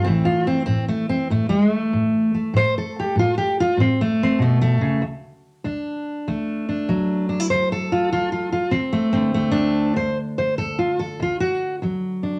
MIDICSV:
0, 0, Header, 1, 2, 480
1, 0, Start_track
1, 0, Tempo, 619195
1, 40, Time_signature, 4, 2, 24, 8
1, 9609, End_track
2, 0, Start_track
2, 0, Title_t, "Steel-string acoustic guitar"
2, 0, Program_c, 0, 25
2, 34, Note_on_c, 0, 60, 85
2, 46, Note_on_c, 0, 45, 64
2, 52, Note_on_c, 0, 52, 46
2, 58, Note_on_c, 0, 57, 47
2, 195, Note_on_c, 0, 65, 85
2, 198, Note_off_c, 0, 60, 0
2, 358, Note_off_c, 0, 65, 0
2, 365, Note_on_c, 0, 60, 86
2, 493, Note_off_c, 0, 45, 0
2, 501, Note_off_c, 0, 60, 0
2, 511, Note_on_c, 0, 60, 79
2, 520, Note_on_c, 0, 45, 65
2, 677, Note_off_c, 0, 60, 0
2, 686, Note_off_c, 0, 57, 0
2, 686, Note_on_c, 0, 57, 80
2, 845, Note_off_c, 0, 57, 0
2, 848, Note_on_c, 0, 60, 81
2, 971, Note_off_c, 0, 45, 0
2, 1006, Note_off_c, 0, 60, 0
2, 1011, Note_on_c, 0, 45, 67
2, 1017, Note_on_c, 0, 57, 79
2, 1147, Note_off_c, 0, 57, 0
2, 1156, Note_on_c, 0, 56, 94
2, 1342, Note_off_c, 0, 56, 0
2, 1342, Note_on_c, 0, 57, 94
2, 1457, Note_off_c, 0, 45, 0
2, 1497, Note_on_c, 0, 45, 64
2, 1808, Note_off_c, 0, 57, 0
2, 1817, Note_on_c, 0, 57, 46
2, 1940, Note_off_c, 0, 45, 0
2, 1954, Note_off_c, 0, 52, 0
2, 1966, Note_on_c, 0, 45, 70
2, 1988, Note_on_c, 0, 72, 98
2, 2138, Note_off_c, 0, 72, 0
2, 2154, Note_on_c, 0, 69, 85
2, 2322, Note_on_c, 0, 67, 81
2, 2345, Note_off_c, 0, 57, 0
2, 2415, Note_off_c, 0, 45, 0
2, 2447, Note_on_c, 0, 45, 68
2, 2465, Note_off_c, 0, 67, 0
2, 2474, Note_on_c, 0, 65, 94
2, 2614, Note_off_c, 0, 65, 0
2, 2617, Note_on_c, 0, 67, 83
2, 2773, Note_off_c, 0, 67, 0
2, 2781, Note_off_c, 0, 69, 0
2, 2793, Note_on_c, 0, 65, 94
2, 2896, Note_off_c, 0, 45, 0
2, 2924, Note_on_c, 0, 45, 71
2, 2940, Note_off_c, 0, 65, 0
2, 2948, Note_on_c, 0, 60, 86
2, 3098, Note_off_c, 0, 60, 0
2, 3109, Note_on_c, 0, 57, 89
2, 3280, Note_on_c, 0, 60, 87
2, 3374, Note_off_c, 0, 45, 0
2, 3402, Note_on_c, 0, 47, 60
2, 3416, Note_off_c, 0, 57, 0
2, 3424, Note_off_c, 0, 60, 0
2, 3426, Note_on_c, 0, 57, 82
2, 3568, Note_off_c, 0, 57, 0
2, 3577, Note_on_c, 0, 57, 109
2, 3726, Note_off_c, 0, 47, 0
2, 3730, Note_on_c, 0, 49, 62
2, 3889, Note_off_c, 0, 49, 0
2, 3889, Note_on_c, 0, 38, 74
2, 3893, Note_off_c, 0, 57, 0
2, 4337, Note_off_c, 0, 38, 0
2, 4374, Note_on_c, 0, 38, 71
2, 4379, Note_on_c, 0, 62, 59
2, 4820, Note_off_c, 0, 38, 0
2, 4865, Note_on_c, 0, 38, 76
2, 4868, Note_on_c, 0, 57, 61
2, 5181, Note_off_c, 0, 62, 0
2, 5184, Note_on_c, 0, 62, 55
2, 5305, Note_off_c, 0, 38, 0
2, 5338, Note_on_c, 0, 38, 73
2, 5339, Note_on_c, 0, 54, 57
2, 5648, Note_off_c, 0, 62, 0
2, 5652, Note_on_c, 0, 62, 61
2, 5733, Note_off_c, 0, 62, 0
2, 5733, Note_on_c, 0, 64, 51
2, 5782, Note_off_c, 0, 38, 0
2, 5811, Note_off_c, 0, 64, 0
2, 5815, Note_on_c, 0, 72, 96
2, 5824, Note_on_c, 0, 38, 71
2, 5972, Note_off_c, 0, 72, 0
2, 5985, Note_on_c, 0, 69, 89
2, 6137, Note_off_c, 0, 57, 0
2, 6140, Note_on_c, 0, 65, 80
2, 6264, Note_off_c, 0, 38, 0
2, 6288, Note_off_c, 0, 65, 0
2, 6297, Note_on_c, 0, 38, 64
2, 6298, Note_on_c, 0, 65, 93
2, 6441, Note_off_c, 0, 65, 0
2, 6450, Note_on_c, 0, 65, 78
2, 6599, Note_off_c, 0, 65, 0
2, 6608, Note_on_c, 0, 65, 80
2, 6616, Note_off_c, 0, 69, 0
2, 6740, Note_off_c, 0, 38, 0
2, 6751, Note_off_c, 0, 54, 0
2, 6754, Note_on_c, 0, 60, 80
2, 6760, Note_on_c, 0, 38, 71
2, 6768, Note_off_c, 0, 65, 0
2, 6919, Note_on_c, 0, 57, 90
2, 7066, Note_off_c, 0, 60, 0
2, 7075, Note_on_c, 0, 60, 73
2, 7091, Note_on_c, 0, 50, 43
2, 7211, Note_off_c, 0, 38, 0
2, 7234, Note_off_c, 0, 57, 0
2, 7243, Note_on_c, 0, 57, 86
2, 7264, Note_on_c, 0, 38, 68
2, 7376, Note_on_c, 0, 62, 95
2, 7703, Note_off_c, 0, 38, 0
2, 7711, Note_off_c, 0, 62, 0
2, 7720, Note_off_c, 0, 60, 0
2, 7724, Note_off_c, 0, 57, 0
2, 7724, Note_on_c, 0, 72, 89
2, 7727, Note_on_c, 0, 38, 69
2, 7885, Note_off_c, 0, 72, 0
2, 8048, Note_on_c, 0, 72, 77
2, 8174, Note_off_c, 0, 38, 0
2, 8199, Note_off_c, 0, 72, 0
2, 8202, Note_on_c, 0, 38, 64
2, 8202, Note_on_c, 0, 69, 83
2, 8361, Note_on_c, 0, 65, 74
2, 8363, Note_off_c, 0, 69, 0
2, 8523, Note_off_c, 0, 65, 0
2, 8523, Note_on_c, 0, 69, 85
2, 8651, Note_off_c, 0, 38, 0
2, 8680, Note_on_c, 0, 38, 74
2, 8683, Note_off_c, 0, 69, 0
2, 8701, Note_on_c, 0, 65, 79
2, 8837, Note_off_c, 0, 65, 0
2, 8840, Note_on_c, 0, 66, 94
2, 9108, Note_off_c, 0, 66, 0
2, 9129, Note_off_c, 0, 38, 0
2, 9162, Note_on_c, 0, 38, 67
2, 9171, Note_on_c, 0, 54, 45
2, 9481, Note_on_c, 0, 62, 46
2, 9609, Note_off_c, 0, 38, 0
2, 9609, Note_off_c, 0, 50, 0
2, 9609, Note_off_c, 0, 54, 0
2, 9609, Note_off_c, 0, 62, 0
2, 9609, End_track
0, 0, End_of_file